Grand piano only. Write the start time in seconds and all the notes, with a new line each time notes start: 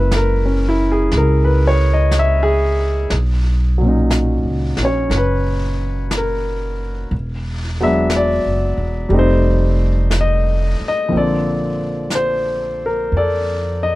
Already playing: G#3 A#3 C#4 E4 B4 E5
0.17 A#4
0.46 C#4
0.69 E4
0.92 G#4
1.17 A#4
1.45 B4
1.67 C#5
1.93 D#5
2.19 E5
2.43 G#4
3.78 A#2 F#3
3.85 C#4 D#4
4.83 C#4 C#5
5.17 B4
6.18 A#4
7.81 F#3 G#3 B3 D4 E5
8.17 D5
9.09 G3 A3
9.13 C4 D#4
9.19 C5
10.21 D#5
10.88 D#5
11.09 F3 A#3 C4
11.14 D3 A4 D5
12.15 C5
12.86 A#4
13.17 A4 D5
13.83 D#5